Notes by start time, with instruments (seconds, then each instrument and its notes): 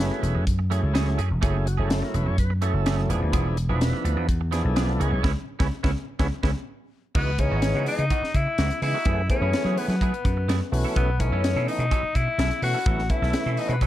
Already playing: tonewheel organ F#3 A3 C#4 E4 G#4
0.00 tonewheel organ B4
0.11 muted clean electric guitar stroke
0.22 slap bass E1, muted clean electric guitar stroke, closed hi-hat
0.35 slap bass F#2, muted clean electric guitar stroke
0.47 kick, closed hi-hat
0.59 muted clean electric guitar stroke
0.70 clean electric guitar E3 A3 C#4 G#4, tonewheel organ F#3 A3 C#4 E4 G#4, closed hi-hat
0.82 slap bass C#2, muted clean electric guitar stroke
0.94 clean electric guitar E3 A3 C#4 G#4, snare, closed hi-hat
1.18 slap bass F#2, clean electric guitar E3 A3 C#4 G#4, closed hi-hat
1.30 slap bass E1, muted clean electric guitar stroke
1.41 slap bass F#1, clean electric guitar E3 A3 C#4 G#4, tonewheel organ F#3 A3 C#4 E4 G#4, kick, closed hi-hat
1.56 tonewheel organ E4
1.66 tonewheel organ F#4, muted clean electric guitar stroke, closed hi-hat
1.77 slap bass F#1, tonewheel organ F#3 A3 C#4 E4 A4, clean electric guitar A3 C#4 G#4
1.82 tonewheel organ G#4
1.90 tonewheel organ A4, muted clean electric guitar stroke, snare, closed hi-hat
2.02 tonewheel organ A#4, muted clean electric guitar stroke, snare
2.14 slap bass E1, tonewheel organ B4, muted clean electric guitar stroke, closed hi-hat
2.26 slap bass F#2, tonewheel organ C#5, muted clean electric guitar stroke
2.38 tonewheel organ B4, kick, closed hi-hat
2.50 muted clean electric guitar stroke
2.62 clean electric guitar E3 A3 C#4 G#4, tonewheel organ F#3 A3 C#4 E4 A4, closed hi-hat
2.74 slap bass F#1, muted clean electric guitar stroke
2.86 clean electric guitar E3 A3 C#4 G#4, snare, closed hi-hat
3.09 slap bass E1, tonewheel organ F3 B3 D4 E4 G#4, clean electric guitar F3 B3 D4 G#4, closed hi-hat
3.21 slap bass D2, muted clean electric guitar stroke
3.33 slap bass E1, clean electric guitar F3 B3 D4 G#4, kick, closed hi-hat
3.57 muted clean electric guitar stroke, closed hi-hat
3.69 slap bass E1, tonewheel organ F3 B3 D4 E4 B4, clean electric guitar B3 D4 G#4
3.80 muted clean electric guitar stroke, snare, closed hi-hat
3.93 muted clean electric guitar stroke
4.04 slap bass D2, muted clean electric guitar stroke, closed hi-hat
4.16 slap bass E2, muted clean electric guitar stroke
4.29 kick, closed hi-hat
4.41 muted clean electric guitar stroke
4.51 clean electric guitar F3 B3 D4 G#4, tonewheel organ F3 B3 D4 E4 G#4, snare, closed hi-hat
4.64 slap bass B1, tonewheel organ A4, muted clean electric guitar stroke
4.76 clean electric guitar F3 B3 D4 G#4, tonewheel organ G#4, snare, closed hi-hat
4.90 tonewheel organ A4
5.00 slap bass C#2, clean electric guitar E3 B3 C#4 G#4, tonewheel organ G#3 B3 C#4 E4 G#4 A#4, closed hi-hat
5.12 slap bass B1, tonewheel organ C#5, muted clean electric guitar stroke
5.23 slap bass C#2, clean electric guitar B3 C#4 E4, tonewheel organ B3 C#4 E4 G#4 B4 C#5, kick, snare
5.59 slap bass C#2, clean electric guitar B3 C#4 E4, tonewheel organ B3 C#4 E4 G#4 B4 C#5, kick, snare
5.83 slap bass C#2, clean electric guitar B3 C#4 E4, tonewheel organ B3 C#4 E4 G#4 B4 C#5, kick, snare
6.19 slap bass C#2, clean electric guitar B3 C#4 E4, tonewheel organ B3 C#4 E4 G#4 B4 C#5, kick, snare
6.43 slap bass C#2, clean electric guitar B3 C#4 E4, tonewheel organ B3 C#4 E4 G#4 B4 C#5, kick, snare
7.15 slap bass C#2, tonewheel organ E3 G#3 B3 D#4 F#4, clean electric guitar E3 B3 D#4 F#4, tenor saxophone B3, flute B4, kick, crash
7.38 tonewheel organ E3 G#3 B3 D#4 G#4, tenor saxophone C#4, flute C#5, muted clean electric guitar stroke, kick, closed hi-hat
7.51 slap bass G#1, clean electric guitar B3 D#4 F#4
7.62 muted clean electric guitar stroke, snare, closed hi-hat
7.75 slap bass C#3, clean electric guitar B3 D#4 F#4
7.86 tenor saxophone D#4, flute D#5, open hi-hat
7.99 slap bass C#3, muted clean electric guitar stroke, closed hi-hat
8.10 clean electric guitar E3 B3 D#4 F#4, kick, closed hi-hat
8.22 muted slap bass stroke, muted clean electric guitar stroke, snare
8.34 slap bass C#3, tenor saxophone E4, flute E5, muted clean electric guitar stroke, kick, closed hi-hat
8.47 muted clean electric guitar stroke
8.58 slap bass C#2, clean electric guitar E3 B3 D#4 F#4, snare, closed hi-hat
8.71 closed hi-hat
8.82 slap bass C#3, tonewheel organ E3 G#3 B3 D#4 G#4, tenor saxophone E4, flute E5, muted clean electric guitar stroke, open hi-hat
8.94 clean electric guitar B3 D#4 F#4
9.05 slap bass F#2, tonewheel organ E3 A3 B3 C#4 G#4, clean electric guitar A3 B3 E4 G#4, kick, closed hi-hat
9.30 tonewheel organ E3 A3 B3 C#4 G#4, tenor saxophone C#4, flute C#5, muted clean electric guitar stroke, kick, closed hi-hat
9.41 slap bass F#2, clean electric guitar B3 E4 G#4
9.53 muted clean electric guitar stroke, snare, closed hi-hat
9.65 slap bass F#3, clean electric guitar B3 E4 G#4
9.77 tenor saxophone B3, flute B4, open hi-hat
9.88 slap bass F#3, tenor saxophone B3, flute B4, muted clean electric guitar stroke, snare, closed hi-hat
10.01 clean electric guitar A3 B3 E4 G#4, kick, closed hi-hat
10.14 muted clean electric guitar stroke, closed hi-hat
10.25 slap bass F#2, muted clean electric guitar stroke, kick, closed hi-hat
10.37 muted clean electric guitar stroke
10.48 slap bass F#2, clean electric guitar A3 B3 E4 G#4, snare, closed hi-hat
10.61 muted clean electric guitar stroke
10.72 slap bass B1, tonewheel organ E3 A3 B3 C#4 F#4, muted clean electric guitar stroke, open hi-hat
10.85 clean electric guitar C#4 E4 A4
10.96 slap bass B1, clean electric guitar F#3 C#4 E4 A4, tenor saxophone B3, flute B4, kick, closed hi-hat
11.19 tonewheel organ E3 A3 B3 C#4 D#4, tenor saxophone C#4, flute C#5, muted clean electric guitar stroke, kick, closed hi-hat
11.32 slap bass F#2, clean electric guitar C#4 E4 A4
11.44 muted clean electric guitar stroke, snare, closed hi-hat
11.56 slap bass B2, clean electric guitar C#4 E4 A4
11.67 tenor saxophone D#4, flute D#5, open hi-hat
11.79 slap bass B2, muted clean electric guitar stroke, closed hi-hat
11.91 clean electric guitar F#3 C#4 E4 A4, kick, closed hi-hat
12.03 muted slap bass stroke, muted clean electric guitar stroke
12.15 slap bass B2, tenor saxophone E4, flute E5, muted clean electric guitar stroke, kick, closed hi-hat
12.27 muted clean electric guitar stroke
12.38 slap bass B1, clean electric guitar F#3 C#4 E4 A4, snare, closed hi-hat
12.51 muted clean electric guitar stroke, closed hi-hat
12.62 slap bass B2, tonewheel organ E3 A3 B3 C#4 F#4, tenor saxophone F#4, flute F#5, muted clean electric guitar stroke, open hi-hat
12.74 clean electric guitar C#4 E4 A4
12.86 slap bass A1, tonewheel organ E3 A3 B3 C#4 E4, clean electric guitar F#3 C#4 E4 A4, kick, closed hi-hat
12.99 snare
13.10 tonewheel organ E3 A3 B3 C#4 E4, tenor saxophone E4, flute E5, muted clean electric guitar stroke, kick, closed hi-hat
13.22 slap bass B1, clean electric guitar C#4 E4 A4, snare
13.33 muted clean electric guitar stroke, snare, closed hi-hat
13.46 slap bass B2, clean electric guitar C#4 E4 A4
13.57 tenor saxophone D#4, flute D#5, open hi-hat
13.69 slap bass B2, tenor saxophone B3, flute B4, muted clean electric guitar stroke, closed hi-hat
13.81 clean electric guitar F#3 C#4 E4 A4, kick, closed hi-hat